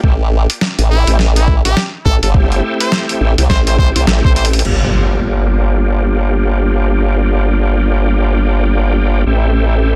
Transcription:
0.04 A1 A3 C4 E4 G4, kick
0.50 closed hi-hat
0.61 snare
0.79 A1, closed hi-hat
0.90 E4
1.07 A1 A3 C4 E4 G4, closed hi-hat
1.19 snare
1.36 E4, closed hi-hat
1.48 kick
1.65 A1 G4, closed hi-hat
1.77 snare
2.05 A1 A4, kick
2.23 G1 A4, closed hi-hat
2.34 A3 C4 E4 G4, kick
2.52 closed hi-hat
2.80 C5, closed hi-hat
2.92 snare
3.09 closed hi-hat
3.21 A1
3.38 C2 A3 C4 E4 G4, closed hi-hat
3.50 A1 C5, kick, snare
3.67 A3 C4 E4 G4 C5, closed hi-hat
3.79 C5, kick
3.96 C2 C5, closed hi-hat
4.07 A1, snare
4.25 A1 C5, kick
4.36 C5, closed hi-hat
4.45 closed hi-hat
4.53 closed hi-hat
4.59 closed hi-hat
4.65 G1 A#3 D4 F4 G4, crash, impact
9.26 A1 A3 C4 E4 G4

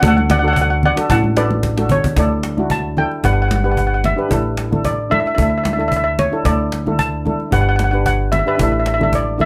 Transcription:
0.02 D2 D4 F#4 A4, cajon bass, low conga
0.08 F#5
0.17 F#5, high conga
0.30 D5 F#5, cajon slap, high conga, low conga
0.39 D4 F#5
0.44 F#4 A4, cajon slap
0.48 F#5
0.53 F#5, cajon bass
0.62 F#5
0.70 F#5
0.83 D5 F#5, cajon slap, low conga
0.96 D4 F#4 A4, cajon slap
1.10 A1 F#5 A5, cajon bass
1.24 high conga
1.36 D4 F#4 A4 B4 D5, cajon slap
1.51 cajon slap, high conga
1.63 cajon bass, cajon slap
1.77 D4 F#4 A4, cajon slap, high conga
1.89 C#5, cajon bass, low conga
2.04 cajon bass, low conga
2.16 D2 D4 E4 A4 D5, cajon bass
2.43 cajon slap
2.57 D4 E4 F#4, cajon slap, high conga
2.70 A5, cajon bass
2.97 D4 E4 A4 G5, cajon slap, low conga
3.12 cajon slap
3.23 G1 D4 G4 B4 F#5, cajon bass
3.33 F#5
3.42 F#5
3.48 F#5, cajon slap, high conga
3.56 F#5
3.63 D4 G4 B4 F#5, cajon slap
3.72 F#5
3.77 F#5, cajon bass
3.87 F#5
3.94 F#5
4.04 E5, cajon slap, high conga, low conga
4.16 D4 G4 B4, cajon slap
4.29 A1 D4 E4 A4, cajon bass
4.57 cajon slap
4.71 D4 E4 A4, cajon slap, high conga, low conga
4.85 D5, cajon bass
5.10 D4 E4 A4 E5, cajon slap, high conga, low conga
5.20 E5
5.26 E5, cajon slap
5.35 D2 D4 E4 A4 E5, cajon bass
5.43 E5
5.50 E5
5.58 E5
5.64 E5, cajon slap, high conga
5.73 D4 E5
5.78 E4 A4 E5, cajon slap
5.88 E5, cajon bass
5.97 E5
6.04 E5
6.19 C#5, cajon slap, high conga, low conga
6.32 D4 E4 A4, cajon slap
6.44 D2 D4 E4 A4 D5, cajon bass
6.72 cajon slap
6.86 D4 E4 A4, cajon slap, high conga, low conga
6.99 A5, cajon bass
7.25 D4 E4 A4, cajon slap, high conga, low conga
7.40 cajon slap
7.51 G1 D4 G4 B4 F#5, cajon bass
7.61 F#5
7.69 F#5
7.76 F#5, cajon slap, high conga
7.84 F#5
7.91 D4 G4 B4 F#5, cajon slap
8.06 F#5, cajon bass
8.32 E5, cajon slap, high conga, low conga
8.39 E5
8.46 D4 G4 B4 E5, cajon slap
8.55 D4 E4 E5
8.59 A1 A4 E5, cajon bass
8.72 E5
8.80 E5
8.86 E5, cajon slap
8.94 E5
8.99 D4 E4 A4 E5, cajon slap, high conga, low conga
9.13 D5, cajon bass
9.38 D4 E4 A4 E5, cajon slap, high conga, low conga

